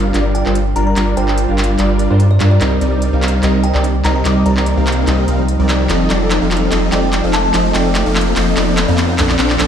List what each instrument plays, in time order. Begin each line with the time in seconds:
Already playing: sub bass G1, supersaw synth G3 D4 F4 A#4 F5, ambient pad G3 D4 F4 A#4, riser
0.14 sub bass G1, supersaw synth G3 D4 F4 A#4 D5, clap, closed hi-hat
0.35 kalimba G5, closed hi-hat
0.46 sub bass G1, supersaw synth G3 D4 F4 A#4 C5, clap
0.55 closed hi-hat
0.76 sub bass G1, supersaw synth G3 D4 F4 A#4 D5, kalimba A#5, closed hi-hat
0.87 kalimba A#5
0.96 sub bass G1, supersaw synth G3 D4 F4 A#4 D5, clap, closed hi-hat
1.17 sub bass G1, supersaw synth G3 D4 F4 A#4 C5, kalimba G5, closed hi-hat
1.28 clap
1.38 closed hi-hat
1.49 sub bass G1, supersaw synth G3 D4 F4 A#4 F5
1.58 clap, closed hi-hat
1.64 closed hi-hat
1.79 sub bass G1, supersaw synth G3 D4 F4 A#4 D5, clap, closed hi-hat
1.99 closed hi-hat
2.10 sub bass G2, supersaw synth G3 D4 F4 A#4 C5
2.20 closed hi-hat
2.31 kalimba D5
2.40 sub bass G2, supersaw synth G3 D4 F4 A#4 D5, clap, closed hi-hat
2.51 kalimba D5
2.61 sub bass C2, ambient pad C3 A#3 D#4, supersaw synth G3 C4 D#4 A#4 D#5, clap, closed hi-hat
2.81 sub bass C2, supersaw synth G3 C4 D#4 A#4 D5, closed hi-hat
3.02 closed hi-hat
3.13 sub bass C2, supersaw synth G3 C4 D#4 A#4 F5
3.22 clap, closed hi-hat
3.28 closed hi-hat
3.43 sub bass C2, supersaw synth G3 C4 D#4 A#4 D#5, clap, closed hi-hat
3.63 kalimba G5, closed hi-hat
3.75 sub bass C2, supersaw synth G3 C4 D#4 A#4 D5, clap
3.84 closed hi-hat
4.05 sub bass C2, supersaw synth G3 C4 D#4 A#4 D#5, kalimba A#5, clap, closed hi-hat
4.16 kalimba A#5
4.25 sub bass C2, supersaw synth G3 C4 D#4 A#4 D#5, kalimba D6, clap, closed hi-hat
4.46 sub bass C2, supersaw synth G3 C4 D#4 A#4 D5, kalimba A#5, closed hi-hat
4.57 clap
4.66 closed hi-hat
4.77 sub bass C2, supersaw synth G3 C4 D#4 A#4 F5
4.87 clap, closed hi-hat
4.92 closed hi-hat
5.07 sub bass C2, supersaw synth G3 C4 D#4 A#4 D#5, clap, closed hi-hat
5.28 sub bass C2, supersaw synth G3 C4 D#4 A#4 F5, closed hi-hat
5.48 closed hi-hat
5.59 sub bass C2, supersaw synth G3 C4 D#4 A#4 D5
5.69 clap, closed hi-hat
5.89 sub bass F1, supersaw synth F3 C4 D#4 A4 D#5, ambient pad F3 C4 A4, clap, closed hi-hat
6.10 sub bass F1, supersaw synth F3 C4 D#4 A4 D5, clap, closed hi-hat
6.31 clap, closed hi-hat
6.42 sub bass F1, supersaw synth F3 C4 D#4 A4 F5
6.51 clap, closed hi-hat
6.57 closed hi-hat
6.72 sub bass F1, supersaw synth F3 C4 D#4 A4 D#5, clap, closed hi-hat
6.92 sub bass F1, supersaw synth F3 C4 D#4 A4 D5, kalimba G5, clap, closed hi-hat
7.13 clap, closed hi-hat
7.24 sub bass F1, supersaw synth F3 C4 D#4 A4 F5
7.33 kalimba A5, clap, closed hi-hat
7.44 kalimba A5
7.54 sub bass F1, supersaw synth F3 C4 D#4 A4 D#5, clap, closed hi-hat
7.74 sub bass F1, supersaw synth F3 C4 D#4 A4 D5, kalimba G5, clap, closed hi-hat
7.95 clap, closed hi-hat
8.06 sub bass F1, supersaw synth F3 C4 D#4 A4 F5
8.16 clap, closed hi-hat
8.21 closed hi-hat
8.36 sub bass F1, supersaw synth F3 C4 D#4 A4 D#5, clap, closed hi-hat
8.57 sub bass F1, supersaw synth F3 C4 D#4 A4 D5, clap, closed hi-hat
8.77 clap, closed hi-hat
8.88 sub bass F2, supersaw synth F3 C4 D#4 A4 F5, kalimba D5
8.98 clap, closed hi-hat
9.09 kalimba D5
9.18 sub bass A#1, supersaw synth F3 C4 D4 A4 D5, ambient pad A#3 D4 G4, clap, closed hi-hat
9.29 clap
9.39 sub bass A#1, supersaw synth F3 C4 D4 A4 D5, clap, closed hi-hat
9.50 clap
9.59 sub bass A#1, supersaw synth F3 C4 D4 A4 D5, clap, closed hi-hat